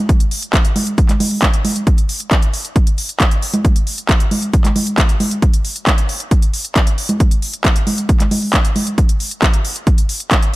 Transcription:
0.09 kick loud
0.09 closed hi-hat medium
0.20 closed hi-hat medium
0.31 open hi-hat loud
0.42 closed hi-hat medium
0.54 kick loud
0.54 clap loud
0.54 closed hi-hat medium
0.65 closed hi-hat medium
0.76 open hi-hat loud
0.76 high conga medium
0.87 closed hi-hat medium
0.98 kick loud
0.98 closed hi-hat medium
1.09 clap soft
1.09 closed hi-hat medium
1.09 high conga medium
1.20 open hi-hat loud
1.20 high conga medium
1.31 open hi-hat medium
1.42 kick loud
1.42 clap loud
1.42 closed hi-hat medium
1.54 closed hi-hat medium
1.65 open hi-hat loud
1.65 high conga medium
1.76 closed hi-hat medium
1.87 kick loud
1.87 closed hi-hat medium
1.98 closed hi-hat medium
2.09 open hi-hat loud
2.20 closed hi-hat medium
2.31 kick loud
2.31 clap loud
2.31 closed hi-hat medium
2.42 closed hi-hat medium
2.54 open hi-hat loud
2.65 closed hi-hat medium
2.76 kick loud
2.76 closed hi-hat medium
2.87 closed hi-hat medium
2.98 open hi-hat loud
3.09 closed hi-hat medium
3.20 kick loud
3.20 clap loud
3.20 closed hi-hat medium
3.31 closed hi-hat medium
3.42 open hi-hat loud
3.54 closed hi-hat medium
3.54 high conga medium
3.65 kick loud
3.65 closed hi-hat medium
3.76 closed hi-hat medium
3.87 open hi-hat loud
3.98 closed hi-hat medium
4.09 kick loud
4.09 clap loud
4.09 closed hi-hat medium
4.20 closed hi-hat medium
4.31 open hi-hat loud
4.31 high conga medium
4.42 closed hi-hat medium
4.53 kick loud
4.53 closed hi-hat medium
4.65 clap soft
4.65 closed hi-hat medium
4.65 high conga medium
4.76 open hi-hat loud
4.76 high conga medium
4.87 closed hi-hat medium
4.98 kick loud
4.98 clap loud
4.98 closed hi-hat medium
5.09 closed hi-hat medium
5.20 open hi-hat loud
5.20 high conga medium
5.31 closed hi-hat medium
5.42 kick loud
5.42 closed hi-hat medium
5.53 closed hi-hat medium
5.65 open hi-hat loud
5.76 closed hi-hat medium
5.87 kick loud
5.87 clap loud
5.87 closed hi-hat medium
5.98 closed hi-hat medium
6.09 open hi-hat loud
6.20 closed hi-hat medium
6.31 kick loud
6.31 closed hi-hat medium
6.42 closed hi-hat medium
6.54 open hi-hat loud
6.65 closed hi-hat medium
6.76 kick loud
6.76 clap loud
6.76 closed hi-hat medium
6.87 closed hi-hat medium
6.98 open hi-hat loud
7.09 closed hi-hat medium
7.09 high conga medium
7.20 kick loud
7.20 closed hi-hat medium
7.31 closed hi-hat medium
7.42 open hi-hat loud
7.53 closed hi-hat medium
7.65 kick loud
7.65 clap loud
7.65 closed hi-hat medium
7.76 closed hi-hat medium
7.87 open hi-hat loud
7.87 high conga medium
7.98 closed hi-hat medium
8.09 kick loud
8.09 closed hi-hat medium
8.20 clap soft
8.20 closed hi-hat medium
8.20 high conga medium
8.31 open hi-hat loud
8.31 high conga medium
8.42 open hi-hat medium
8.53 kick loud
8.53 clap loud
8.53 closed hi-hat medium
8.65 closed hi-hat medium
8.76 open hi-hat loud
8.76 high conga medium
8.87 closed hi-hat medium
8.98 kick loud
8.98 closed hi-hat medium
9.09 closed hi-hat medium
9.20 open hi-hat loud
9.31 closed hi-hat medium
9.42 kick loud
9.42 clap loud
9.42 closed hi-hat medium
9.53 closed hi-hat medium
9.65 open hi-hat loud
9.76 closed hi-hat medium
9.87 kick loud
9.87 closed hi-hat medium
9.98 closed hi-hat medium
10.09 open hi-hat loud
10.20 closed hi-hat medium
10.31 kick loud
10.31 clap loud
10.31 closed hi-hat medium
10.42 closed hi-hat medium

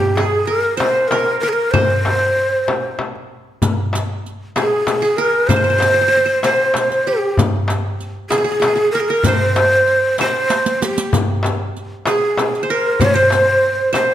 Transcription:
0.00 0.29 F4 medium
0.00 0.17 G4 medium
0.00 0.24 G4 medium
0.16 0.47 G#4 medium
0.16 1.39 G#4 medium
0.16 darbuka tek medium
0.16 frame drum medium
0.46 0.77 A#4 medium
0.46 1.11 A#4 medium
0.77 1.73 C5 medium
0.77 1.09 C5 medium
0.77 darbuka tek medium
0.77 frame drum medium
1.08 1.39 A#4 medium
1.08 1.43 A#4 medium
1.08 darbuka tek medium
1.08 frame drum medium
1.40 1.50 A#4 medium
1.40 2.56 A#4 medium
1.48 1.54 G#4 medium
1.53 1.73 A#4 medium
1.71 2.98 C5 medium
1.71 2.95 C5 medium
1.71 frame drum medium
1.71 darbuka dum medium
2.05 darbuka tek medium
2.05 frame drum medium
2.36 darbuka ka soft
2.68 darbuka tek medium
2.68 frame drum medium
2.99 darbuka tek medium
2.99 frame drum medium
3.15 darbuka ka soft
3.62 riq medium
3.62 darbuka dum medium
3.62 frame drum medium
3.93 riq medium
3.93 darbuka tek medium
3.93 frame drum medium
4.26 riq soft
4.56 5.02 G#4 medium
4.56 riq soft
4.56 darbuka tek medium
4.56 frame drum medium
4.60 5.18 G#4 medium
4.87 riq soft
4.87 darbuka tek medium
4.87 frame drum medium
5.02 6.23 G#4 medium
5.02 riq soft
5.02 darbuka ka soft
5.17 5.49 A#4 medium
5.17 6.31 A#4 medium
5.47 6.43 C5 loud
5.47 5.56 C5 medium
5.47 riq medium
5.47 darbuka dum medium
5.47 frame drum medium
5.56 5.64 C5 medium
5.64 5.69 C5 medium
5.70 5.78 C5 medium
5.78 5.85 C5 medium
5.78 riq medium
5.78 darbuka tek medium
5.78 frame drum medium
5.86 5.94 C5 soft
5.94 6.01 C5 medium
6.01 6.08 C5 medium
6.08 6.17 C5 medium
6.13 riq soft
6.17 6.25 C5 soft
6.26 6.44 C5 medium
6.43 7.09 C5 medium
6.43 7.50 C5 medium
6.43 riq soft
6.43 darbuka tek medium
6.43 frame drum medium
6.74 riq soft
6.74 darbuka tek medium
6.74 frame drum medium
6.90 riq soft
6.90 darbuka ka soft
7.07 8.36 G4 medium
7.07 7.39 G4 medium
7.37 riq medium
7.37 darbuka dum medium
7.37 frame drum medium
7.68 riq soft
7.68 darbuka tek medium
7.68 frame drum medium
8.00 riq soft
8.30 8.89 G#4 medium
8.30 8.37 G#4 medium
8.30 riq medium
8.30 darbuka tek medium
8.30 frame drum medium
8.38 8.44 G#4 soft
8.44 8.51 G#4 medium
8.52 8.59 G#4 soft
8.60 8.67 G#4 medium
8.60 riq soft
8.60 darbuka tek medium
8.60 frame drum medium
8.68 8.75 G#4 soft
8.76 9.97 G#4 medium
8.76 riq soft
8.76 darbuka ka soft
8.92 9.02 A#4 medium
8.92 9.10 A#4 medium
9.00 9.10 G#4 medium
9.09 9.28 A#4 medium
9.09 10.23 A#4 medium
9.24 10.19 C5 loud
9.24 riq medium
9.24 darbuka dum medium
9.24 frame drum medium
9.28 10.20 C5 medium
9.56 riq soft
9.56 darbuka tek medium
9.56 frame drum medium
9.87 riq soft
9.87 darbuka ka soft
10.18 10.86 C5 medium
10.18 11.26 C5 medium
10.18 riq soft
10.18 darbuka tek medium
10.18 frame drum medium
10.50 riq soft
10.50 darbuka tek medium
10.66 riq medium
10.66 darbuka ka soft
10.82 12.13 G4 soft
10.82 11.14 G4 medium
10.82 riq medium
10.98 riq medium
11.13 riq medium
11.13 darbuka dum medium
11.13 frame drum medium
11.43 riq soft
11.43 darbuka tek medium
11.43 frame drum medium
11.76 riq soft
12.06 13.28 G#4 medium
12.06 12.73 G#4 medium
12.06 riq soft
12.06 darbuka tek medium
12.06 frame drum medium
12.38 riq soft
12.38 darbuka tek medium
12.38 frame drum medium
12.53 riq soft
12.53 darbuka ka soft
12.63 13.00 C5 medium
12.70 13.83 A#4 medium
12.70 13.03 A#4 medium
13.00 13.15 C5 medium
13.00 13.06 C5 loud
13.00 riq medium
13.00 darbuka dum medium
13.00 frame drum medium
13.05 13.16 C#5 medium
13.14 13.94 C5 loud
13.14 13.92 C5 medium
13.30 riq soft
13.30 darbuka tek medium
13.30 frame drum medium
13.93 14.14 C5 medium
13.93 riq soft
13.93 darbuka tek medium
13.93 frame drum medium

